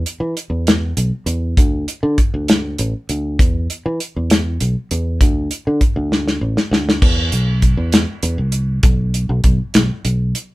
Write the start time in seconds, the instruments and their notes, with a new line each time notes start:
0.06 closed hi-hat
0.20 fingered electric bass E3
0.37 closed hi-hat
0.50 fingered electric bass E2
0.67 snare, closed hi-hat
0.97 fingered electric bass B1, closed hi-hat
1.26 fingered electric bass E2, closed hi-hat
1.57 fingered electric bass D2, kick, closed hi-hat
1.88 closed hi-hat
2.03 fingered electric bass D3
2.18 kick, closed hi-hat
2.34 fingered electric bass D2
2.48 snare, closed hi-hat
2.78 fingered electric bass A1, closed hi-hat
3.09 fingered electric bass D2, closed hi-hat
3.39 fingered electric bass E2, kick, closed hi-hat
3.70 closed hi-hat
3.86 fingered electric bass E3
4.00 closed hi-hat
4.16 fingered electric bass E2
4.30 snare, closed hi-hat
4.60 fingered electric bass B1, closed hi-hat
4.91 fingered electric bass E2, closed hi-hat
5.21 fingered electric bass D2, kick, closed hi-hat
5.51 closed hi-hat
5.67 fingered electric bass D3
5.81 kick, closed hi-hat
5.96 fingered electric bass D2
6.12 snare
6.28 snare
6.41 fingered electric bass A1
6.57 snare
6.71 fingered electric bass D2, snare
6.89 snare
7.02 fingered electric bass E2, kick, crash
7.32 fingered electric bass B1, closed hi-hat
7.62 kick, closed hi-hat
7.77 fingered electric bass E2
7.92 snare, closed hi-hat
8.23 fingered electric bass E2, closed hi-hat
8.38 fingered electric bass C2
8.52 closed hi-hat
8.83 fingered electric bass B1, kick, closed hi-hat
9.14 closed hi-hat
9.29 fingered electric bass B1
9.44 fingered electric bass B1, kick, closed hi-hat
9.74 fingered electric bass B1, snare, closed hi-hat
10.05 fingered electric bass B1, closed hi-hat
10.35 closed hi-hat